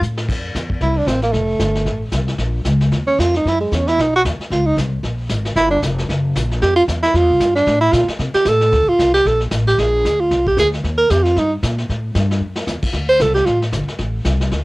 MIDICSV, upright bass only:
0, 0, Header, 1, 3, 480
1, 0, Start_track
1, 0, Key_signature, -1, "major"
1, 0, Tempo, 263620
1, 508, Time_signature, 4, 2, 24, 8
1, 15879, Key_signature, -2, "major"
1, 26658, End_track
2, 0, Start_track
2, 0, Title_t, "Upright bass"
2, 0, Program_c, 0, 32
2, 24, Note_on_c, 0, 45, 103
2, 491, Note_off_c, 0, 45, 0
2, 517, Note_on_c, 0, 41, 80
2, 978, Note_off_c, 0, 41, 0
2, 997, Note_on_c, 0, 40, 89
2, 1458, Note_off_c, 0, 40, 0
2, 1470, Note_on_c, 0, 36, 78
2, 1934, Note_off_c, 0, 36, 0
2, 1944, Note_on_c, 0, 33, 91
2, 2411, Note_off_c, 0, 33, 0
2, 2425, Note_on_c, 0, 29, 84
2, 2892, Note_off_c, 0, 29, 0
2, 2905, Note_on_c, 0, 31, 97
2, 3363, Note_off_c, 0, 31, 0
2, 3374, Note_on_c, 0, 33, 78
2, 3847, Note_off_c, 0, 33, 0
2, 3858, Note_on_c, 0, 36, 94
2, 4329, Note_off_c, 0, 36, 0
2, 4339, Note_on_c, 0, 34, 80
2, 4810, Note_off_c, 0, 34, 0
2, 4824, Note_on_c, 0, 37, 97
2, 5293, Note_off_c, 0, 37, 0
2, 5308, Note_on_c, 0, 39, 86
2, 5775, Note_off_c, 0, 39, 0
2, 5804, Note_on_c, 0, 41, 100
2, 6264, Note_off_c, 0, 41, 0
2, 6283, Note_on_c, 0, 42, 83
2, 6744, Note_off_c, 0, 42, 0
2, 6769, Note_on_c, 0, 40, 91
2, 7227, Note_off_c, 0, 40, 0
2, 7246, Note_on_c, 0, 35, 84
2, 7706, Note_off_c, 0, 35, 0
2, 7737, Note_on_c, 0, 39, 93
2, 7977, Note_off_c, 0, 39, 0
2, 8200, Note_on_c, 0, 37, 77
2, 8664, Note_off_c, 0, 37, 0
2, 8682, Note_on_c, 0, 36, 93
2, 9145, Note_off_c, 0, 36, 0
2, 9162, Note_on_c, 0, 34, 84
2, 9625, Note_off_c, 0, 34, 0
2, 9641, Note_on_c, 0, 32, 91
2, 10105, Note_off_c, 0, 32, 0
2, 10117, Note_on_c, 0, 31, 85
2, 10583, Note_off_c, 0, 31, 0
2, 10604, Note_on_c, 0, 29, 88
2, 11067, Note_off_c, 0, 29, 0
2, 11088, Note_on_c, 0, 30, 84
2, 11549, Note_off_c, 0, 30, 0
2, 11571, Note_on_c, 0, 34, 94
2, 12031, Note_off_c, 0, 34, 0
2, 12054, Note_on_c, 0, 41, 86
2, 12512, Note_off_c, 0, 41, 0
2, 12526, Note_on_c, 0, 40, 94
2, 12988, Note_off_c, 0, 40, 0
2, 12998, Note_on_c, 0, 41, 85
2, 13145, Note_off_c, 0, 41, 0
2, 13145, Note_on_c, 0, 40, 66
2, 13291, Note_off_c, 0, 40, 0
2, 13302, Note_on_c, 0, 36, 76
2, 13459, Note_off_c, 0, 36, 0
2, 13476, Note_on_c, 0, 43, 95
2, 13943, Note_off_c, 0, 43, 0
2, 13953, Note_on_c, 0, 45, 91
2, 14422, Note_off_c, 0, 45, 0
2, 14439, Note_on_c, 0, 46, 101
2, 14698, Note_off_c, 0, 46, 0
2, 14913, Note_on_c, 0, 48, 86
2, 15175, Note_off_c, 0, 48, 0
2, 15390, Note_on_c, 0, 45, 106
2, 15860, Note_off_c, 0, 45, 0
2, 15882, Note_on_c, 0, 38, 85
2, 16136, Note_off_c, 0, 38, 0
2, 16365, Note_on_c, 0, 36, 89
2, 16829, Note_off_c, 0, 36, 0
2, 16842, Note_on_c, 0, 34, 81
2, 17307, Note_off_c, 0, 34, 0
2, 17321, Note_on_c, 0, 33, 97
2, 17787, Note_off_c, 0, 33, 0
2, 17815, Note_on_c, 0, 34, 85
2, 18273, Note_off_c, 0, 34, 0
2, 18296, Note_on_c, 0, 38, 86
2, 18754, Note_off_c, 0, 38, 0
2, 18768, Note_on_c, 0, 36, 82
2, 19230, Note_off_c, 0, 36, 0
2, 19244, Note_on_c, 0, 38, 99
2, 19708, Note_off_c, 0, 38, 0
2, 19729, Note_on_c, 0, 39, 86
2, 20190, Note_off_c, 0, 39, 0
2, 20215, Note_on_c, 0, 41, 96
2, 20673, Note_off_c, 0, 41, 0
2, 20691, Note_on_c, 0, 43, 83
2, 21151, Note_off_c, 0, 43, 0
2, 21174, Note_on_c, 0, 46, 96
2, 21632, Note_off_c, 0, 46, 0
2, 21657, Note_on_c, 0, 45, 85
2, 22114, Note_off_c, 0, 45, 0
2, 22123, Note_on_c, 0, 43, 97
2, 22576, Note_off_c, 0, 43, 0
2, 22587, Note_on_c, 0, 42, 80
2, 23057, Note_off_c, 0, 42, 0
2, 23070, Note_on_c, 0, 40, 96
2, 23332, Note_off_c, 0, 40, 0
2, 23547, Note_on_c, 0, 38, 83
2, 24017, Note_off_c, 0, 38, 0
2, 24029, Note_on_c, 0, 36, 98
2, 24497, Note_off_c, 0, 36, 0
2, 24507, Note_on_c, 0, 33, 83
2, 24976, Note_off_c, 0, 33, 0
2, 24992, Note_on_c, 0, 31, 91
2, 25251, Note_off_c, 0, 31, 0
2, 25472, Note_on_c, 0, 33, 89
2, 25937, Note_off_c, 0, 33, 0
2, 25946, Note_on_c, 0, 36, 94
2, 26414, Note_off_c, 0, 36, 0
2, 26433, Note_on_c, 0, 38, 84
2, 26658, Note_off_c, 0, 38, 0
2, 26658, End_track
3, 0, Start_track
3, 0, Title_t, "Muted upright bass strokes"
3, 7988, Note_on_c, 9, 29, 41
3, 8170, Note_off_c, 9, 29, 0
3, 14718, Note_on_c, 9, 29, 42
3, 14900, Note_off_c, 9, 29, 0
3, 15192, Note_on_c, 9, 29, 42
3, 15374, Note_off_c, 9, 29, 0
3, 16147, Note_on_c, 9, 29, 40
3, 16329, Note_off_c, 9, 29, 0
3, 23351, Note_on_c, 9, 29, 41
3, 23533, Note_off_c, 9, 29, 0
3, 25267, Note_on_c, 9, 29, 44
3, 25449, Note_off_c, 9, 29, 0
3, 26658, End_track
0, 0, End_of_file